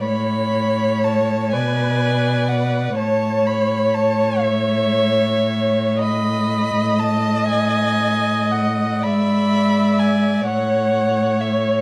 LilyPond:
<<
  \new Staff \with { instrumentName = "Violin" } { \time 6/8 \key a \major \tempo 4. = 41 b''4 a''8 gis''4 fis''8 | a''8 b''8 a''8 e''4. | b''4 a''8 gis''4 fis''8 | b''4 gis''8 fis''4 e''8 | }
  \new Staff \with { instrumentName = "Viola" } { \time 6/8 \key a \major cis''4. b'4. | cis''2. | dis''2. | e''4. cis''4. | }
  \new Staff \with { instrumentName = "Violin" } { \time 6/8 \key a \major cis''4. d''4. | cis''4. cis''4. | dis''2. | d''4. cis''4. | }
  \new Staff \with { instrumentName = "Cello" } { \clef bass \time 6/8 \key a \major a,4. b,4. | a,2.~ | a,2. | gis,4. a,4. | }
>>